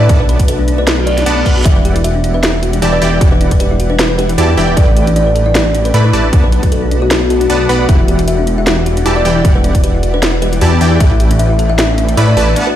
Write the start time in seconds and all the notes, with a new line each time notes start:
Already playing: A2 A3 D4 B4
0.01 D4
0.09 B1 B3 D4 F#4 B4 F#5 A5, kick, closed hi-hat
0.20 B4 D5
0.29 B4, closed hi-hat
0.40 F#4, kick, closed hi-hat
0.48 A4 B4, closed hi-hat
0.59 D4
0.68 D4, closed hi-hat
0.78 B4 D5
0.87 B4, snare, closed hi-hat, reverse cymbal
0.98 F#4
1.07 A4 D5, closed hi-hat
1.18 D4, snare, closed hi-hat
1.26 B1 B3 D4 B4 D5 F#5 A5, closed hi-hat
1.37 D5
1.46 B1 B3 B4 D5 F#5 B5, kick, open hi-hat
1.57 F#4
1.65 E1 E3 G3 D4 E4 G4 D5 E5 F#5, kick, closed hi-hat
1.76 B4
1.85 G4, closed hi-hat
1.96 E4, closed hi-hat
2.04 F#4 E5, closed hi-hat
2.15 D4
2.24 D4, closed hi-hat
2.34 B4 E5
2.43 G4, snare, closed hi-hat
2.54 E4
2.63 F#4, closed hi-hat
2.73 D4, closed hi-hat
2.82 E1 E3 D4 E4 G4 D5 A5, closed hi-hat
2.93 B4 D5
3.02 E1 E3 E4 G4 D5 G5, open hi-hat
3.12 E4
3.21 E1 E3 E4 F#4 G4 D5 F#5, kick, closed hi-hat
3.31 D4 B4
3.41 D4, closed hi-hat
3.51 B4, kick, closed hi-hat
3.60 G4 B4, closed hi-hat
3.71 E4
3.80 F#4, closed hi-hat
3.90 D4 B4
3.99 D4, snare, closed hi-hat
4.10 B4
4.18 G4 B4, closed hi-hat
4.29 E4, closed hi-hat
4.38 E2 E3 E4 F#4 G4 D5 A5, closed hi-hat
4.49 D4
4.57 E1 E3 D4 E4 G4 D5 G5, open hi-hat
4.68 B4
4.77 A1 A3 D4 E4 G4 A4 B4 D5 G5, kick, closed hi-hat
4.88 E4
4.96 G4, closed hi-hat
5.07 D4, closed hi-hat
5.16 D4 D5, closed hi-hat
5.26 B4
5.35 A4, closed hi-hat
5.46 E4 D5
5.55 G4, snare, closed hi-hat
5.66 D4
5.74 D4, closed hi-hat
5.85 B4, closed hi-hat
5.94 A2 A3 E4 A4 B4 D5 B5, closed hi-hat
6.04 E4 B4
6.13 A1 A3 E4 G4 B4 D5 A5, open hi-hat
6.24 D4
6.32 B1 B3 D4 D5 F#5 A5, kick, closed hi-hat
6.43 B4 D5
6.52 B4, closed hi-hat
6.63 F#4, kick, closed hi-hat
6.72 A4, closed hi-hat
6.82 D4
6.91 D4, closed hi-hat
7.02 F#4 D5
7.11 B4, snare, closed hi-hat
7.22 F#4
7.30 F#4 A4, closed hi-hat
7.41 D4, closed hi-hat
7.50 B1 B3 D4 B4 D5 F#5 A5, closed hi-hat
7.60 D5
7.69 B1 B3 B4 D5 F#5 B5, open hi-hat
7.80 F#4
7.89 E1 E3 G3 D4 E4 G4 D5 E5 F#5, kick, closed hi-hat
7.99 E4
8.08 G4, closed hi-hat
8.19 E4, closed hi-hat
8.28 F#4 E5, closed hi-hat
8.38 D4
8.47 D4, closed hi-hat
8.58 E4 E5
8.67 G4, snare, closed hi-hat
8.77 E4
8.86 F#4, closed hi-hat
8.97 D4, closed hi-hat
9.06 E1 E3 D4 E4 G4 D5 A5, closed hi-hat
9.16 E4 D5
9.25 E1 E3 E4 G4 D5 G5, open hi-hat
9.36 E4
9.45 E1 E3 E4 G4 D5 F#5, kick, closed hi-hat
9.55 D4 B4
9.64 D4, closed hi-hat
9.75 E4, kick, closed hi-hat
9.84 G4 B4, closed hi-hat
9.94 E4
10.03 F#4, closed hi-hat
10.14 D4 B4
10.22 D4, snare, closed hi-hat
10.33 E4
10.42 G4 B4, closed hi-hat
10.52 E4, closed hi-hat
10.61 E2 E3 E4 F#4 G4 D5 A5, closed hi-hat
10.72 D4
10.81 E2 E3 D4 E4 G4 D5 G5, open hi-hat
10.91 E4
11.00 A1 A3 D4 E4 G4 A4 B4 D5 E5 G5, kick, closed hi-hat
11.11 E4
11.20 G4, closed hi-hat
11.31 D4, closed hi-hat
11.39 D4 E5, closed hi-hat
11.50 E4
11.59 A4, closed hi-hat
11.69 E4 E5
11.78 G4, snare, closed hi-hat
11.89 D4
11.98 D4, closed hi-hat
12.08 E4, closed hi-hat
12.17 A2 A3 E4 A4 B4 D5 B5, closed hi-hat
12.28 E4 D5
12.37 A1 A3 E4 G4 B4 D5 A5, open hi-hat
12.47 D4
12.56 B3 D4 B4 D5 F#5 A5, closed hi-hat
12.67 F#4 B4